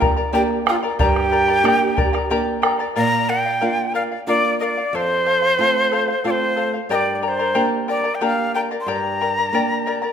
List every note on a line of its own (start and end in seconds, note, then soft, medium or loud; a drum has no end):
0.00 0.20 A#3 soft
0.00 0.20 D4 soft
0.00 0.21 G4 medium
0.00 0.17 A#4 medium
0.00 0.16 D5 medium
0.00 0.17 G5 medium
0.00 0.15 A#5 medium
0.00 bombo low medium
0.16 0.32 A#4 soft
0.16 0.32 D5 soft
0.16 0.33 A#5 soft
0.33 0.85 A#3 soft
0.33 0.85 D4 soft
0.33 0.86 G4 medium
0.33 0.66 G4 medium
0.33 0.43 G4 medium
0.33 0.65 A#4 medium
0.33 0.65 D5 medium
0.33 0.65 G5 medium
0.33 0.42 G5 medium
0.33 0.66 A#5 medium
0.33 bombo rim soft
0.50 bombo rim soft
0.66 0.76 F4 medium
0.66 0.83 A#4 medium
0.66 0.82 D5 medium
0.66 0.76 F5 medium
0.66 0.82 G5 medium
0.66 0.81 A#5 medium
0.66 bombo rim medium
0.83 0.98 A#4 soft
0.83 0.98 D5 soft
0.83 0.99 A#5 soft
0.99 1.63 G2 medium
0.99 1.32 G4 medium
0.99 2.27 G4 medium
0.99 1.31 A#4 medium
0.99 1.31 D5 medium
0.99 1.30 G5 medium
0.99 2.27 G5 loud
0.99 1.32 A#5 medium
0.99 bombo low medium
1.16 bombo rim medium
1.32 1.48 A#4 medium
1.32 1.48 D5 medium
1.32 1.48 G5 medium
1.32 1.47 A#5 medium
1.48 1.64 A#4 soft
1.48 1.64 D5 soft
1.48 1.64 A#5 medium
1.48 bombo rim soft
1.63 2.16 A#3 medium
1.63 2.16 D4 soft
1.63 2.17 G4 medium
1.63 1.97 G4 medium
1.63 1.96 A#4 medium
1.63 1.97 D5 medium
1.63 1.95 G5 medium
1.63 1.97 A#5 medium
1.63 bombo rim medium
1.97 2.13 A#4 medium
1.97 2.12 D5 medium
1.97 2.13 G5 medium
1.97 2.12 A#5 medium
1.97 bombo low medium
2.13 2.30 A#4 soft
2.13 2.30 D5 medium
2.13 2.30 A#5 medium
2.13 bombo rim soft
2.30 2.83 A#3 soft
2.30 2.83 D4 soft
2.30 2.63 G4 medium
2.30 2.83 G4 soft
2.30 2.61 A#4 medium
2.30 2.61 D5 medium
2.30 2.61 G5 medium
2.30 2.62 A#5 medium
2.62 2.79 A#4 medium
2.62 2.79 D5 medium
2.62 2.79 G5 medium
2.62 2.78 A#5 medium
2.62 bombo rim medium
2.79 2.94 A#4 soft
2.79 2.95 D5 medium
2.79 2.96 A#5 medium
2.96 3.60 A#2 medium
2.96 3.27 A#4 medium
2.96 3.28 D5 medium
2.96 3.28 F5 medium
2.96 3.31 A#5 loud
3.29 3.45 A#4 medium
3.29 3.45 D5 medium
3.29 3.44 F5 medium
3.29 3.94 G5 medium
3.46 3.60 D5 soft
3.46 3.61 F5 medium
3.61 4.14 A#3 soft
3.61 4.15 D4 soft
3.61 4.15 F4 medium
3.61 3.93 A#4 medium
3.61 3.94 D5 medium
3.61 3.94 F5 medium
3.94 4.11 A#4 medium
3.94 4.11 D5 medium
3.94 4.02 F5 medium
3.94 4.10 F5 medium
4.12 4.27 D5 soft
4.12 4.27 F5 soft
4.27 4.80 A#3 soft
4.27 4.80 D4 soft
4.27 4.80 F4 soft
4.27 4.59 A#4 medium
4.27 4.58 D5 medium
4.27 4.60 D5 medium
4.27 4.61 F5 medium
4.60 4.77 A#4 medium
4.60 4.77 D5 medium
4.60 4.97 D5 medium
4.60 4.65 D#5 medium
4.60 4.76 F5 medium
4.77 4.94 D5 soft
4.77 4.93 F5 medium
4.93 5.57 F2 medium
4.93 5.24 A4 medium
4.93 5.25 C5 medium
4.93 6.26 C5 loud
4.93 5.25 F5 medium
5.26 5.42 A4 medium
5.26 5.42 C5 medium
5.26 5.41 F5 medium
5.42 5.58 C5 soft
5.42 5.59 F5 soft
5.58 6.11 A3 soft
5.58 6.11 C4 soft
5.58 6.11 F4 medium
5.58 5.90 A4 medium
5.58 5.91 C5 medium
5.58 5.92 F5 medium
5.92 6.08 A4 medium
5.92 6.09 C5 medium
5.92 6.07 F5 medium
6.08 6.24 C5 soft
6.08 6.24 F5 soft
6.24 6.77 A3 soft
6.24 6.77 C4 soft
6.24 6.78 F4 soft
6.24 6.55 A4 medium
6.24 6.56 C5 medium
6.24 6.31 D5 medium
6.24 6.56 F5 medium
6.30 6.71 C5 medium
6.56 6.73 A4 soft
6.56 6.74 C5 medium
6.56 6.73 F5 medium
6.74 6.90 C5 soft
6.74 6.90 F5 soft
6.89 7.54 G2 medium
6.89 7.23 G4 medium
6.89 7.21 A#4 medium
6.89 7.22 D5 medium
6.89 6.96 D#5 medium
6.89 7.21 G5 medium
6.89 7.22 A#5 medium
6.95 7.15 D5 medium
7.15 7.24 D5 medium
7.22 7.39 A#4 medium
7.22 7.38 D5 medium
7.22 7.29 D5 medium
7.22 7.39 G5 medium
7.22 7.38 A#5 medium
7.28 7.62 C5 medium
7.39 7.54 A#4 soft
7.39 7.54 D5 soft
7.39 7.54 A#5 medium
7.54 8.08 A#3 soft
7.54 8.08 D4 soft
7.54 7.88 G4 medium
7.54 8.09 G4 soft
7.54 7.87 A#4 medium
7.54 7.87 D5 medium
7.54 7.87 G5 medium
7.54 7.88 A#5 medium
7.88 8.04 A#4 medium
7.88 8.04 D5 medium
7.88 8.16 D5 medium
7.88 8.05 G5 medium
7.88 8.03 A#5 medium
8.04 8.20 A#4 soft
8.04 8.20 D5 soft
8.04 8.21 A#5 medium
8.15 8.24 G5 medium
8.21 8.74 A#3 soft
8.21 8.74 D4 soft
8.21 8.54 G4 medium
8.21 8.74 G4 soft
8.21 8.54 A#4 medium
8.21 8.54 D5 medium
8.21 8.54 F5 medium
8.21 8.53 G5 medium
8.21 8.55 A#5 medium
8.54 8.71 A#4 soft
8.54 8.70 D5 medium
8.54 8.71 G5 medium
8.54 8.61 G5 medium
8.54 8.70 A#5 medium
8.71 8.87 A#4 soft
8.71 8.87 D5 soft
8.71 8.87 A#5 medium
8.81 8.90 C6 medium
8.86 9.51 G2 medium
8.86 9.20 G4 medium
8.86 9.20 A#4 medium
8.86 9.20 D5 medium
8.86 9.20 G5 medium
8.86 9.21 A#5 medium
8.86 10.13 A#5 loud
9.21 9.37 A#4 medium
9.21 9.37 D5 medium
9.21 9.37 G5 soft
9.21 9.38 A#5 medium
9.39 9.53 A#4 soft
9.39 9.53 D5 soft
9.39 9.53 A#5 soft
9.53 10.05 A#3 soft
9.53 10.06 D4 soft
9.53 10.06 G4 soft
9.53 9.86 G4 medium
9.53 9.86 A#4 medium
9.53 9.86 D5 medium
9.53 9.85 G5 medium
9.53 9.87 A#5 medium
9.86 10.03 A#4 medium
9.86 10.02 D5 medium
9.86 10.03 G5 medium
9.86 10.01 A#5 medium
10.02 10.13 A#4 soft
10.02 10.13 D5 soft
10.02 10.13 A#5 medium